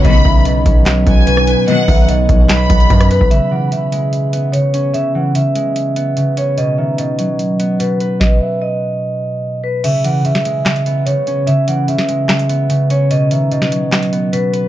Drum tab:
CC |----------------|----------------|----------------|----------------|
HH |x---x-x-x-x-x-x-|x-o-x-x-x-xxxxx-|x---x-x-x-x-x-x-|x---x-x-x-x-x-x-|
CP |--------x-------|--------x-------|----------------|----------------|
SD |--------o----r--|--------o----r--|----------------|----------------|
BD |o-o---o---o-----|--o---o---o-o--o|----------------|----------------|

CC |----------------|----------------|x---------------|----------------|
HH |x---x-x-x-x-x-x-|----------------|x-x-x-x-xxx-x-x-|x-x-x-x-xxx-x-x-|
CP |----------------|----------------|--------x-------|--------x-------|
SD |----------------|o---------------|-----o--o-------|-----o--o-------|
BD |----------------|o---------------|----------------|----------------|

CC |----------------|
HH |x-x-x-x-xxx-x-x-|
CP |--------x-------|
SD |-----o--o-------|
BD |----------------|